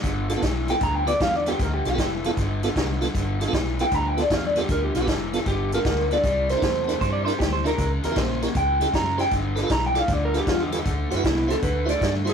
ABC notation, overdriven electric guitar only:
X:1
M:4/4
L:1/8
Q:"Swing" 1/4=155
K:Gmix
V:1 name="Overdriven electric guitar" clef=bass
[G,,D,] [G,,D,] [G,,E,] [G,,E,] [G,,D,] [G,,D,] [G,,D,] [G,,D,] | [G,,D,] [G,,D,] [G,,E,] [G,,E,] [G,,D,] [G,,D,] [G,,D,] [G,,D,] | [G,,D,] [G,,D,] [G,,E,] [G,,E,] [G,,D,] [G,,D,] [G,,D,] [G,,D,] | [G,,D,] [G,,D,] [G,,E,] [G,,E,] [G,,D,] [G,,D,] [G,,D,] [G,,D,] |
[C,G,] [C,G,] [C,A,] [C,A,] [C,G,] [C,G,] [C,G,] [C,G,] | [^C,_A,] [C,A,] [C,^A,] [C,A,] [C,_A,] [C,A,] [C,A,] [C,A,] | [G,,D,] [G,,D,] [G,,E,] [G,,E,] [G,,D,] [G,,D,] [G,,D,] [G,,D,] | [D,A,] [D,A,] [D,B,] [D,B,] [D,A,] [D,A,] [D,A,] [D,A,] |]